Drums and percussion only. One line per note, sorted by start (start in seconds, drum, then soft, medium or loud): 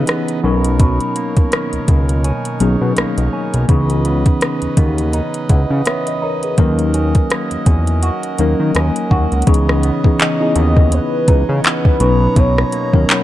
0.07 cross-stick loud
0.07 closed hi-hat medium
0.28 closed hi-hat soft
0.64 closed hi-hat medium
0.80 kick loud
0.80 closed hi-hat medium
1.00 closed hi-hat soft
1.16 closed hi-hat medium
1.37 kick medium
1.37 closed hi-hat medium
1.52 cross-stick loud
1.52 closed hi-hat medium
1.73 closed hi-hat soft
1.88 kick medium
1.88 closed hi-hat medium
2.09 closed hi-hat medium
2.24 closed hi-hat medium
2.45 closed hi-hat medium
2.60 closed hi-hat medium
2.97 cross-stick loud
2.97 closed hi-hat medium
3.18 closed hi-hat soft
3.54 closed hi-hat medium
3.69 kick loud
3.69 closed hi-hat medium
3.90 closed hi-hat soft
4.05 closed hi-hat medium
4.26 kick medium
4.26 closed hi-hat medium
4.41 cross-stick loud
4.41 closed hi-hat medium
4.62 closed hi-hat soft
4.77 kick medium
4.77 closed hi-hat medium
4.98 closed hi-hat medium
5.13 closed hi-hat medium
5.34 closed hi-hat medium
5.49 kick medium
5.49 closed hi-hat medium
5.86 cross-stick loud
5.86 closed hi-hat medium
6.07 closed hi-hat medium
6.43 closed hi-hat medium
6.58 kick loud
6.58 closed hi-hat medium
6.79 closed hi-hat soft
6.94 closed hi-hat medium
7.15 kick medium
7.15 closed hi-hat medium
7.30 cross-stick loud
7.30 closed hi-hat medium
7.51 closed hi-hat soft
7.66 kick medium
7.66 closed hi-hat medium
7.87 closed hi-hat medium
8.03 closed hi-hat medium
8.23 closed hi-hat medium
8.38 closed hi-hat medium
8.75 cross-stick loud
8.75 closed hi-hat medium
8.96 closed hi-hat medium
9.11 kick medium
9.32 closed hi-hat soft
9.42 closed hi-hat soft
9.47 kick loud
9.47 closed hi-hat medium
9.54 closed hi-hat medium
9.69 cross-stick loud
9.83 closed hi-hat medium
10.04 kick loud
10.20 clap loud
10.20 closed hi-hat medium
10.56 closed hi-hat medium
10.77 kick loud
10.92 closed hi-hat medium
11.28 kick medium
11.28 closed hi-hat medium
11.64 clap loud
11.64 closed hi-hat medium
11.85 kick loud
12.00 closed hi-hat medium
12.36 kick loud
12.36 closed hi-hat medium
12.58 cross-stick loud
12.72 closed hi-hat medium
12.93 kick medium
13.09 clap loud
13.09 closed hi-hat medium